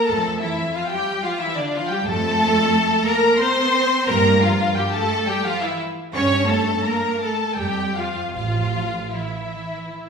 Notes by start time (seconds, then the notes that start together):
0.07 F2 A3 A4 A5
0.39 E3 E4 E5
0.73 F3 F4 F5
0.89 G3 G4 G5
1.23 F3 F4 F5
1.39 E3 E4 E5
1.56 D3 D4 D5
1.71 F3 F5
1.75 F4
1.88 G3 G5
1.92 G4
2.05 F2 A3 A4 A5
3.05 A#3 A#4 A#5
3.39 C4 C5 C6
4.07 G2 A#3 A#4 A#5
4.41 F3 F4 F5
4.75 G3 G4 G5
4.92 A3 A4 A5
5.26 G3 G4 G5
5.43 F3 F4 F5
5.61 E3 E4 E5
6.12 G2 C#4 C#5 C#6
6.17 C#5
6.48 A3 A4 A5
6.84 A#3 A#4 A#5
7.21 A3 A4 A5
7.57 F2 G3 G4 G5
7.95 F3 F4 F5
8.33 A1 F3 F4 F5
9.13 E3 E4 E5